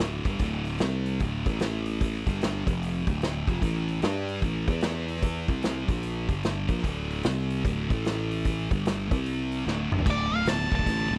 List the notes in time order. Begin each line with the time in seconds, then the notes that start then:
0.00 D1 D2 A2 D3, snare
0.25 G1 G2 D3 G3, kick, open hi-hat
0.39 D1 D2 A2 D3, kick, open hi-hat
0.65 open hi-hat
0.79 C2 C3 G3 C4, snare, open hi-hat
1.06 open hi-hat
1.20 D1 D2 A2 D3, kick, open hi-hat
1.46 A1 A2 E3 A3, kick, open hi-hat
1.60 snare, open hi-hat
1.86 open hi-hat
2.01 kick, open hi-hat
2.27 G1 G2 D3 G3, kick, open hi-hat
2.41 snare, open hi-hat
2.66 F1 F2 C3 F3, kick, open hi-hat
2.83 open hi-hat
3.07 D1 D2 A2 D3, kick, open hi-hat
3.22 snare, open hi-hat
3.47 F1 F2 C3 F3, kick, open hi-hat
3.62 A1 A2 E3 A3, kick, open hi-hat
3.88 open hi-hat
4.02 G2 G3 D4 G4, snare, open hi-hat
4.29 open hi-hat
4.42 A1 A2 E3 A3, kick, open hi-hat
4.68 E2 E3 B3 E4, kick, open hi-hat
4.81 snare, open hi-hat
5.08 open hi-hat
5.16 snare
5.22 kick, open hi-hat
5.48 C2 C3 G3 C4, kick, open hi-hat
5.63 snare, open hi-hat
5.88 A#1 A#2 F3 A#3, kick, open hi-hat
6.03 open hi-hat
6.29 G1 G2 D3 G3, kick, open hi-hat
6.43 snare, open hi-hat
6.68 A#1 A#2 F3 A#3, kick, open hi-hat
6.78 snare
6.83 D1 D2 A2 D3, kick, open hi-hat
7.11 open hi-hat
7.23 C2 C3 G3 C4, snare, open hi-hat
7.50 open hi-hat
7.65 D1 D2 A2 D3, kick, open hi-hat
7.89 A1 A2 E3 A3, kick, open hi-hat
8.05 snare, open hi-hat
8.31 open hi-hat
8.45 kick, open hi-hat
8.71 G1 G2 D3 G3, kick, open hi-hat
8.86 snare, open hi-hat
9.11 C2 C3 G3 C4, kick, open hi-hat
9.26 open hi-hat
9.52 open hi-hat
9.66 D1 D2 A2 D3, snare
9.92 G1 G2 D3 G3, mid tom
9.99 floor tom
10.06 D1 D2 A2, kick, crash
10.10 D5
10.31 D1 D2 A2
10.35 F5
10.45 D1 D2 B2 A5, snare, open hi-hat
10.72 D1 D2 A2 A5, kick
10.79 kick
10.86 A1 D2 A2, kick, open hi-hat
11.11 D1 D2 A2